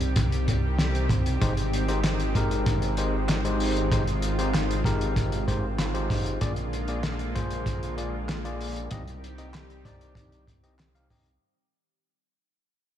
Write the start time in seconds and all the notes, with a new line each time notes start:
Already playing: C2 D#3 G3 C4 G4
0.01 closed hi-hat
0.16 kick, closed hi-hat
0.32 closed hi-hat
0.48 kick, closed hi-hat
0.79 snare, closed hi-hat
0.95 closed hi-hat
1.09 kick, closed hi-hat
1.26 closed hi-hat
1.41 G#1 G#3 D#4 G4 C5, kick, closed hi-hat
1.57 closed hi-hat
1.73 closed hi-hat
1.88 G#3 D#4 G4 C5, closed hi-hat
2.04 snare, clap, closed hi-hat
2.20 closed hi-hat
2.35 G#3 D#4 G4 A#4, kick, closed hi-hat
2.51 closed hi-hat
2.66 kick, closed hi-hat
2.82 closed hi-hat
2.97 G#3 D#4 G4 C5, closed hi-hat
3.28 snare, clap, closed hi-hat
3.45 G#3 D#4 G4 C5, closed hi-hat
3.60 open hi-hat
3.77 closed hi-hat
3.91 G#3 D#4 F4 G4 C5, kick, closed hi-hat
4.07 closed hi-hat
4.22 closed hi-hat
4.38 G#3 D#4 G4 C5, closed hi-hat
4.54 snare, clap, closed hi-hat
4.71 closed hi-hat
4.84 G#3 D#4 G4 A#4, kick, snare, closed hi-hat
5.01 closed hi-hat
5.16 kick, closed hi-hat
5.32 closed hi-hat
5.47 G#3 D#4 G4 C5, kick, closed hi-hat
5.79 snare, clap, closed hi-hat
5.94 G#3 D#4 G4 C5, closed hi-hat
6.10 kick, open hi-hat
6.26 closed hi-hat
6.41 A#1 D3 G#3 A#3 F4 G#4 D5, kick, closed hi-hat
6.56 closed hi-hat
6.73 closed hi-hat
6.88 A#3 F4 G#4 D5, closed hi-hat
7.03 snare, clap, closed hi-hat
7.19 closed hi-hat
7.35 A#3 F4 G#4 C5, kick, closed hi-hat
7.51 closed hi-hat
7.66 kick, closed hi-hat
7.83 closed hi-hat
7.98 A#3 F4 G#4 D5, closed hi-hat
8.29 snare, clap, closed hi-hat
8.45 A#3 F4 G#4 D5, closed hi-hat
8.61 open hi-hat
8.76 closed hi-hat
8.91 D#3 G3 C4 D#4 G4 D#5, kick, closed hi-hat
9.08 closed hi-hat
9.24 closed hi-hat
9.38 C4 D#4 G4 D#5, closed hi-hat
9.54 snare, clap, closed hi-hat
9.70 closed hi-hat
9.85 C4 D#4 G4 D5, kick, snare, closed hi-hat
10.01 closed hi-hat
10.15 kick, closed hi-hat
10.32 closed hi-hat
10.47 kick, closed hi-hat
10.63 C4 D#4 G4 D#5, closed hi-hat
10.79 snare, clap, closed hi-hat
10.95 C4 D#4 G4 F5, closed hi-hat
11.10 C4 D#4 G4 D#5, kick, open hi-hat
11.26 closed hi-hat